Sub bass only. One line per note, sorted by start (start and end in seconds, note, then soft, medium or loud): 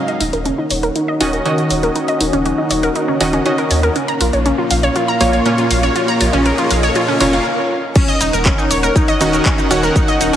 0.21 0.30 D#1 loud
0.33 0.51 D#1 medium
0.71 0.89 D#1 medium
1.21 1.39 D#1 medium
1.71 1.89 D#1 loud
2.21 2.30 D#1 medium
2.33 2.51 D#1 medium
2.71 2.89 D#1 medium
3.21 3.39 D#1 medium
3.71 3.89 D#2 medium
4.21 4.30 A#1 loud
4.33 4.51 A#1 medium
4.71 4.89 A#1 medium
5.21 5.39 A#1 medium
5.71 5.89 A#1 loud
6.21 6.30 A#1 medium
6.33 6.51 A#1 loud
6.71 6.89 A#1 medium
7.21 7.39 F1 medium
8.21 8.30 D#1 loud
8.33 8.51 D#1 medium
8.71 8.89 D#1 loud
9.21 9.39 D#1 medium
9.71 9.89 D#1 loud
10.21 10.30 D#1 medium
10.33 10.36 D#1 loud